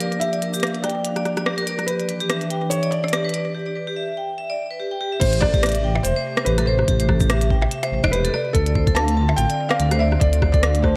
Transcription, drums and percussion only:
0.00 closed hi-hat
0.12 closed hi-hat
0.21 closed hi-hat
0.33 closed hi-hat
0.42 closed hi-hat
0.54 closed hi-hat, cabasa
0.60 cross-stick, closed hi-hat
0.63 closed hi-hat
0.67 closed hi-hat
0.75 closed hi-hat
0.84 cross-stick, closed hi-hat
0.90 closed hi-hat
1.05 closed hi-hat
1.16 cross-stick, closed hi-hat
1.25 cross-stick, closed hi-hat
1.37 cross-stick, closed hi-hat
1.46 cross-stick
1.58 closed hi-hat
1.67 closed hi-hat
1.79 cross-stick, closed hi-hat
1.88 closed hi-hat
2.00 closed hi-hat
2.09 closed hi-hat
2.20 closed hi-hat
2.30 cross-stick, closed hi-hat
2.41 closed hi-hat
2.50 closed hi-hat
2.71 closed hi-hat, cabasa
2.83 closed hi-hat
2.92 closed hi-hat
3.04 cross-stick
3.08 closed hi-hat
3.13 cross-stick, closed hi-hat
3.29 closed hi-hat
3.34 closed hi-hat
5.21 kick, closed hi-hat, crash
5.33 closed hi-hat
5.42 kick, cross-stick
5.54 kick, closed hi-hat
5.63 cross-stick, closed hi-hat
5.66 closed hi-hat
5.69 closed hi-hat
5.72 closed hi-hat
5.75 closed hi-hat
5.95 percussion blips
6.05 closed hi-hat, cabasa
6.37 cross-stick, closed hi-hat
6.46 closed hi-hat
6.58 cross-stick, closed hi-hat
6.79 cross-stick
6.88 kick, closed hi-hat
7.00 closed hi-hat
7.09 kick, cross-stick
7.20 kick, closed hi-hat, cabasa
7.30 cross-stick, closed hi-hat
7.41 closed hi-hat
7.50 kick
7.62 percussion blips
7.71 closed hi-hat
7.83 closed hi-hat, percussion blips
8.04 kick, cross-stick, closed hi-hat
8.13 closed hi-hat
8.25 closed hi-hat
8.34 cross-stick
8.55 kick, closed hi-hat
8.66 closed hi-hat
8.75 kick
8.87 kick, closed hi-hat
8.96 cross-stick, closed hi-hat
9.08 closed hi-hat
9.29 percussion blips
9.38 closed hi-hat, cabasa
9.50 closed hi-hat
9.71 cross-stick, closed hi-hat
9.80 closed hi-hat
9.91 cross-stick, closed hi-hat
10.12 cross-stick
10.21 kick, closed hi-hat
10.33 closed hi-hat
10.42 kick, cross-stick
10.54 kick, closed hi-hat
10.63 cross-stick, closed hi-hat
10.75 closed hi-hat
10.84 kick, cross-stick

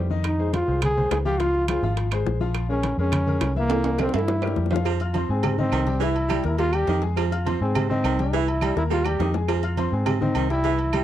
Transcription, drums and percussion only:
0.10 high conga
0.24 high bongo, high conga, high timbale, claves
0.40 high conga
0.53 high bongo, high conga, high timbale
0.82 high bongo, high conga, low conga, high timbale, claves
0.98 high conga, low conga
1.11 high bongo, low bongo, high conga, high timbale, low timbale, claves
1.25 high conga
1.40 high bongo, high conga, high timbale
1.54 high bongo, high conga
1.68 high bongo, high conga, high timbale, claves
1.83 high bongo
1.97 high bongo, high conga, high timbale
2.11 high bongo, high conga, high timbale, claves
2.26 high bongo, low bongo, high conga
2.40 high conga
2.54 high bongo, high conga, high timbale, claves
2.69 high conga
2.83 high bongo, high conga, high timbale
3.12 high bongo, high conga, low conga, high timbale, claves
3.27 high conga, low conga
3.41 high bongo, low bongo, high conga, high timbale, low timbale, claves
3.56 high conga
3.70 high bongo, high conga, high timbale
3.84 high conga, high timbale
3.98 high bongo, high conga, high timbale, claves
4.09 high bongo
4.14 high timbale
4.19 high bongo
4.28 low bongo, high conga, low timbale
4.42 high conga, low timbale, claves
4.47 low bongo
4.56 low bongo, high conga
4.66 low bongo
4.71 high conga, low timbale
4.76 low bongo
4.85 cowbell, high conga, low agogo, claves
5.00 high conga, low agogo
5.14 cowbell, high conga, low agogo
5.43 cowbell, high conga, low conga, low agogo, claves
5.58 high conga, low conga
5.72 cowbell, low timbale, low agogo, claves
5.87 cowbell, high conga
6.01 cowbell, high conga, low agogo
6.16 high conga, low agogo
6.30 cowbell, high conga, low agogo, claves
6.44 cowbell
6.58 cowbell, high conga, low agogo
6.73 high conga, low agogo, claves
6.87 cowbell, high conga, low timbale
7.02 cowbell
7.17 cowbell, high conga, low agogo, claves
7.32 high conga, low agogo
7.47 cowbell, high conga, low agogo
7.75 cowbell, high conga, low conga, low agogo, claves
7.91 high conga, low conga
8.04 cowbell, low timbale, low agogo, claves
8.19 cowbell, high conga
8.33 cowbell, low agogo
8.48 high conga, low agogo
8.61 cowbell, high conga, low agogo, claves
8.77 cowbell, high bongo
8.91 cowbell, high bongo, high conga, low agogo
9.05 low bongo, high conga, low agogo, claves
9.20 cowbell, low bongo, high conga, low timbale
9.34 cowbell, low bongo
9.48 cowbell, high conga, low agogo, claves
9.63 high conga, low agogo
9.77 cowbell, high conga, low agogo
10.06 cowbell, high conga, low conga, low agogo, claves
10.22 high conga, low conga
10.35 cowbell, high conga, low agogo, claves
10.50 cowbell
10.64 cowbell, high conga, low agogo
10.79 high conga, low agogo
10.93 cowbell, high conga, low agogo, claves

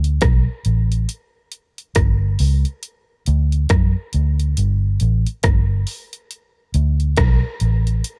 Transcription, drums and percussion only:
0.04 closed hi-hat
0.21 kick, cross-stick, closed hi-hat
0.65 closed hi-hat
0.92 closed hi-hat
1.09 closed hi-hat
1.52 closed hi-hat
1.78 closed hi-hat
1.95 kick, cross-stick, closed hi-hat
2.39 open hi-hat
2.65 closed hi-hat
2.83 closed hi-hat
3.26 closed hi-hat
3.52 closed hi-hat
3.69 kick, cross-stick, closed hi-hat
4.13 closed hi-hat
4.40 closed hi-hat
4.57 closed hi-hat
5.00 closed hi-hat
5.27 closed hi-hat
5.43 kick, cross-stick, closed hi-hat
5.87 open hi-hat
6.13 closed hi-hat
6.31 closed hi-hat
6.74 closed hi-hat
7.00 closed hi-hat
7.17 kick, cross-stick, closed hi-hat
7.60 closed hi-hat
7.87 closed hi-hat
8.04 closed hi-hat

